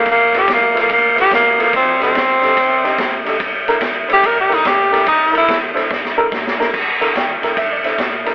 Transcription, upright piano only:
0.34 0.41 B3 medium
0.34 0.41 E4 medium
0.34 0.41 F4 medium
0.34 0.42 A4 medium
0.74 0.82 B3 medium
0.74 0.82 E4 medium
0.74 0.82 F4 medium
0.74 0.82 A4 medium
1.15 1.23 B3 medium
1.15 1.23 E4 medium
1.15 1.24 F4 medium
1.15 1.24 A4 medium
1.57 1.65 B3 medium
1.57 1.65 E4 medium
1.57 1.65 F4 medium
1.57 1.66 A4 medium
2.00 2.07 D4 medium
2.00 2.07 D#4 medium
2.00 2.07 G4 medium
2.00 2.08 A4 medium
2.41 2.49 D4 medium
2.41 2.49 D#4 medium
2.41 2.49 G4 medium
2.41 2.49 A4 medium
2.84 2.91 D4 medium
2.84 2.91 D#4 medium
2.84 2.91 G4 medium
2.84 2.91 C5 medium
3.25 3.32 D4 medium
3.25 3.33 D#4 medium
3.25 3.33 G4 medium
3.25 3.33 A4 medium
3.68 3.74 D4 loud
3.68 3.74 E4 medium
3.68 3.75 A4 medium
3.68 3.75 A#4 loud
4.08 4.15 D4 medium
4.08 4.15 E4 medium
4.08 4.16 A4 medium
4.08 4.16 C5 medium
4.49 4.57 D4 medium
4.49 4.57 E4 medium
4.49 4.57 A4 medium
4.49 4.57 A#4 medium
4.91 4.99 D4 medium
4.91 4.99 E4 medium
4.91 4.99 A4 medium
4.91 4.99 A#4 medium
5.31 5.40 D4 medium
5.31 5.40 E4 medium
5.31 5.40 A4 medium
5.31 5.40 A#4 medium
5.74 5.82 D4 loud
5.74 5.82 E4 medium
5.74 5.82 A4 medium
5.74 5.83 C5 loud
6.17 6.24 D4 medium
6.17 6.25 E4 medium
6.17 6.25 A4 medium
6.17 6.25 A#4 loud
6.59 6.66 D4 medium
6.59 6.66 E4 medium
6.59 6.66 A4 medium
6.59 6.67 A#4 loud
7.00 7.08 D4 medium
7.00 7.08 E4 medium
7.00 7.08 A4 medium
7.00 7.08 A#4 medium
7.13 7.16 F#5 medium
7.13 7.57 G5 loud
7.42 7.49 D4 medium
7.42 7.50 E4 medium
7.42 7.50 A4 medium
7.42 7.50 A#4 medium
7.58 7.71 E5 loud
7.72 7.85 D5 medium
7.84 7.91 D4 medium
7.84 7.92 E4 medium
7.84 7.92 A4 medium
7.84 7.92 C5 medium
7.84 8.35 E5 medium
8.25 8.33 D4 medium
8.25 8.33 E4 medium
8.25 8.33 A4 medium
8.25 8.34 A#4 medium

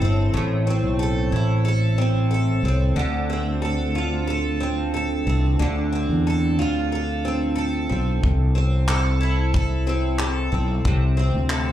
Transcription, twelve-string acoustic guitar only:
0.00 0.32 A2 medium
0.00 0.66 C4 medium
0.00 1.31 E4 medium
0.00 0.99 A4 medium
0.34 2.97 A2 medium
0.67 1.98 C4 medium
0.99 1.64 A4 medium
1.32 3.03 E4 medium
1.65 2.30 A4 medium
1.98 2.64 C4 medium
2.31 3.61 A4 medium
2.65 3.29 C4 soft
2.96 5.58 D3 medium
3.30 4.60 C4 medium
3.62 4.27 A4 medium
3.95 6.57 F4 medium
4.27 4.93 A4 medium
4.60 5.26 C4 medium
4.94 6.26 A4 medium
5.27 5.92 C4 medium
5.59 8.22 D3 medium
5.92 7.24 C4 soft
6.27 6.92 A4 medium
6.59 8.29 F4 medium
6.92 7.55 A4 medium
7.25 7.89 C4 medium
7.56 8.87 A4 medium
7.89 8.55 C4 medium
8.55 9.86 C4 medium
8.88 9.53 A4 medium
9.21 11.72 E4 medium
9.54 10.18 A4 medium
9.87 10.51 C4 medium
10.19 11.49 A4 medium
10.52 11.16 C4 soft
10.85 11.72 C3 medium
11.17 11.72 C4 medium
11.50 11.72 A4 medium

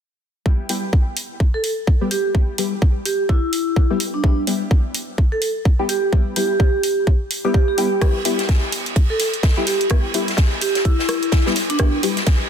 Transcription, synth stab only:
0.46 0.67 G3 medium
0.46 0.67 B3 medium
0.46 0.67 E4 medium
0.46 0.67 G4 medium
0.69 0.84 G3 medium
0.69 0.84 B3 medium
0.69 0.84 E4 medium
0.69 0.84 G4 medium
2.01 2.08 G3 medium
2.01 2.08 B3 medium
2.01 2.08 E4 medium
2.01 2.08 G4 loud
2.35 2.56 G3 medium
2.35 2.56 B3 medium
2.35 2.56 E4 medium
2.35 2.56 G4 medium
2.58 2.73 G3 medium
2.58 2.73 B3 medium
2.58 2.73 E4 medium
2.58 2.73 G4 medium
3.90 3.97 G3 medium
3.90 3.97 B3 medium
3.90 3.97 E4 medium
3.90 3.97 G4 medium
4.24 4.45 G3 medium
4.24 4.45 B3 medium
4.24 4.45 E4 medium
4.24 4.45 G4 medium
4.47 4.62 G3 medium
4.47 4.62 B3 medium
4.47 4.62 E4 medium
4.47 4.62 G4 medium
5.79 5.86 G3 medium
5.79 5.86 B3 medium
5.79 5.86 E4 medium
5.79 5.86 G4 medium
6.13 6.34 G3 medium
6.13 6.34 B3 medium
6.13 6.34 E4 medium
6.13 6.34 G4 medium
6.36 6.51 G3 medium
6.36 6.51 B3 medium
6.36 6.51 E4 medium
6.36 6.51 G4 medium
7.45 7.51 G3 medium
7.45 7.51 B3 medium
7.45 7.51 E4 medium
7.45 7.51 G4 loud
7.78 7.88 G3 medium
7.78 7.88 B3 medium
7.78 7.88 E4 medium
7.78 7.88 G4 loud
8.02 8.23 G3 medium
8.02 8.23 B3 medium
8.02 8.23 E4 medium
8.02 8.23 G4 medium
8.25 8.40 G3 medium
8.25 8.40 B3 medium
8.25 8.40 E4 medium
8.25 8.40 G4 medium
9.57 9.64 G3 medium
9.57 9.64 B3 medium
9.57 9.64 E4 medium
9.57 9.64 G4 loud
9.91 10.12 G3 medium
9.91 10.12 B3 medium
9.91 10.12 E4 medium
9.91 10.12 G4 medium
10.14 10.29 G3 medium
10.14 10.29 B3 medium
10.14 10.29 E4 medium
10.14 10.29 G4 medium
11.46 11.53 G3 medium
11.46 11.53 B3 medium
11.46 11.53 E4 medium
11.46 11.53 G4 loud
11.79 12.01 G3 medium
11.79 12.01 B3 medium
11.79 12.01 E4 medium
11.79 12.01 G4 medium
12.03 12.18 G3 medium
12.03 12.18 B3 medium
12.03 12.18 E4 medium
12.03 12.18 G4 medium

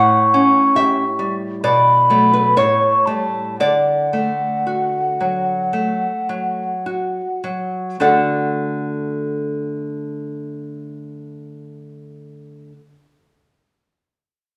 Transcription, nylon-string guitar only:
0.00 1.61 A2 medium
0.00 0.73 F#5 loud
0.34 1.03 C#4 medium
0.75 1.46 G4 soft
0.75 1.61 E5 medium
1.19 1.64 G3 medium
1.64 2.54 B2 medium
1.64 2.30 D5 medium
2.10 2.54 F#3 soft
2.10 2.54 A3 medium
2.33 2.57 B4 medium
2.57 3.56 A2 medium
2.57 3.55 C#5 medium
3.07 3.55 G3 soft
3.07 3.55 A3 soft
3.60 5.71 D3 medium
3.60 7.40 D5 medium
4.13 4.99 A3 soft
4.67 5.53 F#4 soft
5.21 6.07 F#3 soft
5.73 6.62 A3 soft
6.29 7.20 F#3 soft
6.86 7.79 F#4 soft
7.44 7.99 F#3 soft
8.00 12.72 D3 medium
8.00 12.72 A3 soft
8.00 12.72 F#4 soft
8.00 12.73 A4 soft
8.00 12.73 D5 medium
8.00 12.73 F#5 medium

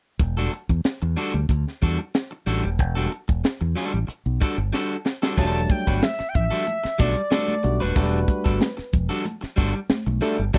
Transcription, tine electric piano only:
5.38 6.06 F#3 medium
5.38 6.06 G3 medium
5.38 6.06 A3 medium
5.38 6.06 D4 medium
7.63 7.81 G3 medium
7.63 7.81 A3 medium
7.63 7.82 D4 medium
7.63 7.82 F#4 medium
7.96 8.03 F#3 medium
7.96 8.64 A3 medium
7.96 8.64 D4 medium
7.96 8.64 F#4 medium
8.02 8.67 G3 medium
10.22 10.40 G3 medium
10.22 10.40 A3 medium
10.22 10.40 D4 medium
10.22 10.40 A4 medium
10.54 10.58 F#3 medium
10.54 10.58 G3 medium
10.54 10.58 A3 medium
10.54 10.58 D4 medium

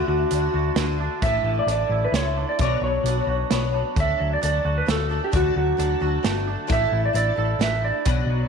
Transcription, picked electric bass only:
0.08 0.23 D2 medium
0.32 0.47 D2 medium
0.54 0.69 D2 medium
0.76 1.07 D2 medium
1.22 1.38 A1 medium
1.43 1.59 A1 medium
1.67 1.83 A1 medium
1.89 2.05 A1 medium
2.12 2.43 C#2 medium
2.59 2.75 B1 medium
2.81 2.97 B1 medium
3.04 3.19 B1 medium
3.27 3.43 B1 medium
3.51 3.82 B1 medium
3.97 4.12 D2 medium
4.20 4.35 D2 medium
4.43 4.58 D2 medium
4.65 4.80 D2 medium
4.88 5.19 D2 medium
5.34 5.49 D2 medium
5.56 5.71 D2 medium
5.79 5.94 D2 medium
6.01 6.17 D2 medium
6.24 6.55 G1 medium
6.70 6.85 A1 medium
6.92 7.08 A1 medium
7.14 7.30 A1 medium
7.38 7.53 A1 medium
7.59 7.90 A1 medium
8.06 8.22 B1 medium
8.27 8.43 B1 medium

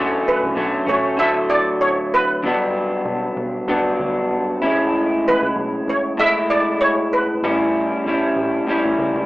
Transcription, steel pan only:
0.28 0.91 B4 medium
0.89 1.20 C#5 medium
1.19 1.51 E5 medium
1.50 1.82 D5 medium
1.81 2.13 C#5 medium
2.14 2.72 B4 medium
5.28 5.85 B4 medium
5.89 6.03 C#5 medium
6.19 6.51 E5 loud
6.50 6.79 D5 medium
6.81 7.13 C#5 medium
7.13 7.71 B4 medium

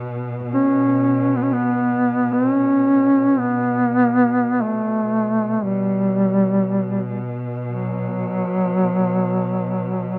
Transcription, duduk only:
0.54 1.38 C#4 medium
1.36 1.44 B3 medium
1.42 1.54 C#4 medium
1.53 2.34 B3 medium
2.33 2.52 C4 medium
2.52 3.41 C#4 medium
3.39 4.63 B3 medium
4.61 5.65 A3 medium
5.64 7.31 G3 medium
7.67 10.19 F#3 medium

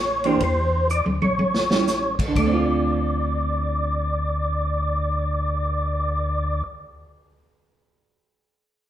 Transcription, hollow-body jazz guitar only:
0.25 0.40 E3 medium
0.25 0.40 A#3 medium
0.25 0.40 D4 medium
0.25 0.40 G4 medium
1.71 1.85 G3 medium
1.71 1.86 C#4 medium
1.71 1.87 E4 medium
2.28 6.59 D3 medium
2.38 6.69 A3 medium
2.47 6.78 C4 medium
2.53 6.85 F4 medium

